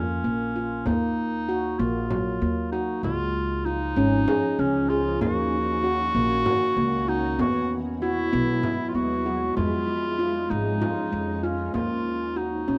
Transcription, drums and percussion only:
0.24 frame drum soft
0.86 frame drum medium
1.17 frame drum soft
2.10 frame drum medium
3.04 frame drum medium
4.28 frame drum medium
5.21 frame drum medium
5.53 frame drum soft
6.46 frame drum medium
6.77 frame drum soft
7.39 frame drum medium
7.70 frame drum soft
8.63 frame drum medium
8.95 frame drum soft
9.57 frame drum medium
10.82 frame drum medium
11.43 frame drum soft
11.74 frame drum medium
12.68 frame drum soft

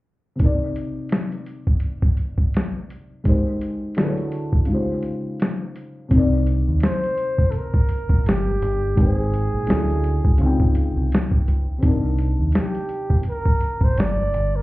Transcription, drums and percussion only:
0.39 kick loud
0.39 closed hi-hat medium
0.76 closed hi-hat medium
1.09 snare loud
1.09 closed hi-hat medium
1.32 closed hi-hat soft
1.46 closed hi-hat medium
1.67 kick medium
1.80 closed hi-hat medium
2.02 kick medium
2.17 closed hi-hat medium
2.38 kick medium
2.54 snare loud
2.54 closed hi-hat medium
2.90 closed hi-hat medium
3.25 kick loud
3.25 closed hi-hat medium
3.61 closed hi-hat medium
3.95 snare loud
3.95 closed hi-hat medium
4.17 closed hi-hat soft
4.32 closed hi-hat medium
4.53 kick medium
4.65 closed hi-hat medium
5.03 closed hi-hat medium
5.40 snare medium
5.40 closed hi-hat medium
5.76 closed hi-hat medium
6.11 kick loud
6.11 closed hi-hat medium
6.47 closed hi-hat medium
6.80 snare loud
6.80 closed hi-hat medium
7.04 closed hi-hat soft
7.18 closed hi-hat medium
7.38 kick medium
7.52 closed hi-hat medium
7.74 kick medium
7.89 closed hi-hat medium
8.09 kick medium
8.26 snare loud
8.26 closed hi-hat medium
8.62 closed hi-hat medium
8.97 kick loud
8.97 closed hi-hat medium
9.34 closed hi-hat medium
9.67 snare loud
9.67 closed hi-hat medium
9.90 closed hi-hat soft
10.04 closed hi-hat medium
10.25 kick medium
10.38 closed hi-hat medium
10.60 kick medium
10.75 closed hi-hat medium
11.12 snare loud
11.12 closed hi-hat medium
11.31 kick medium
11.48 closed hi-hat medium
11.83 kick loud
11.83 closed hi-hat medium
12.18 closed hi-hat medium
12.52 snare loud
12.52 closed hi-hat medium
12.75 closed hi-hat soft
12.89 closed hi-hat medium
13.10 kick medium
13.23 closed hi-hat medium
13.46 kick medium
13.61 closed hi-hat medium
13.81 kick medium
13.98 snare loud
13.98 closed hi-hat loud
14.34 closed hi-hat medium

